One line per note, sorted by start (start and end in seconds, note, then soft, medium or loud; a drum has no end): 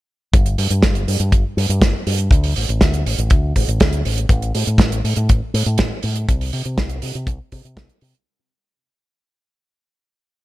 0.34 0.55 G1 loud
0.34 kick loud
0.34 closed hi-hat medium
0.46 closed hi-hat medium
0.58 0.69 G2 medium
0.58 open hi-hat loud
0.70 0.81 G2 medium
0.70 closed hi-hat medium
0.83 1.04 G1 medium
0.83 kick loud
0.83 snare loud
0.83 closed hi-hat medium
0.95 closed hi-hat soft
1.07 1.18 G2 medium
1.07 open hi-hat loud
1.20 1.31 G2 medium
1.20 closed hi-hat medium
1.32 1.43 G1 medium
1.32 kick loud
1.32 closed hi-hat medium
1.57 1.68 G2 medium
1.57 open hi-hat loud
1.69 1.80 G2 medium
1.69 closed hi-hat medium
1.82 1.92 G1 medium
1.82 kick loud
1.82 snare loud
1.82 closed hi-hat medium
2.07 2.28 G2 medium
2.07 open hi-hat loud
2.18 closed hi-hat medium
2.31 2.52 D2 loud
2.31 kick loud
2.31 closed hi-hat medium
2.44 open hi-hat medium
2.56 2.67 A1 medium
2.56 open hi-hat loud
2.69 2.79 A1 medium
2.69 closed hi-hat medium
2.81 3.03 D2 medium
2.81 kick loud
2.81 snare loud
2.81 closed hi-hat medium
2.94 closed hi-hat medium
3.06 3.17 A1 medium
3.06 open hi-hat loud
3.18 3.29 A1 medium
3.18 closed hi-hat medium
3.30 3.52 D2 medium
3.30 kick loud
3.30 closed hi-hat medium
3.56 3.66 A1 medium
3.56 kick medium
3.56 open hi-hat loud
3.68 3.78 A1 medium
3.68 closed hi-hat medium
3.80 4.02 D2 medium
3.80 kick loud
3.80 snare loud
3.80 closed hi-hat medium
3.93 closed hi-hat medium
4.05 4.26 A1 medium
4.05 open hi-hat loud
4.18 closed hi-hat medium
4.29 4.51 A1 medium
4.29 kick loud
4.29 closed hi-hat medium
4.42 closed hi-hat medium
4.55 4.65 A2 medium
4.55 open hi-hat loud
4.67 4.78 A2 medium
4.67 closed hi-hat medium
4.78 5.00 A1 medium
4.78 kick loud
4.78 snare loud
4.78 closed hi-hat medium
4.92 closed hi-hat medium
5.04 5.15 A2 medium
5.04 open hi-hat loud
5.16 5.27 A2 medium
5.16 closed hi-hat medium
5.29 5.40 A1 medium
5.29 kick loud
5.29 closed hi-hat loud
5.54 5.64 A2 medium
5.54 open hi-hat loud
5.66 5.77 A2 loud
5.66 closed hi-hat medium
5.78 5.89 A1 medium
5.78 kick loud
5.78 snare loud
5.78 closed hi-hat medium
6.03 6.25 A2 medium
6.03 open hi-hat medium
6.16 closed hi-hat medium
6.29 6.50 C2 loud
6.29 kick loud
6.29 closed hi-hat medium
6.41 open hi-hat medium
6.53 6.64 C3 medium
6.53 open hi-hat loud
6.65 6.76 C3 medium
6.65 closed hi-hat medium
6.78 6.99 C2 medium
6.78 kick loud
6.78 snare loud
6.78 closed hi-hat medium
6.89 closed hi-hat medium
7.02 7.13 C3 medium
7.02 open hi-hat loud
7.15 7.26 C3 medium
7.15 closed hi-hat medium
7.27 7.38 C2 loud
7.27 kick loud
7.27 closed hi-hat medium
7.52 7.63 C3 medium
7.52 kick medium
7.52 open hi-hat loud
7.65 7.75 C3 medium
7.65 closed hi-hat medium
7.77 7.88 C2 medium
7.77 kick loud
7.77 snare loud
7.77 closed hi-hat medium
7.89 closed hi-hat medium
8.01 8.12 C3 medium
8.01 open hi-hat loud
8.15 closed hi-hat medium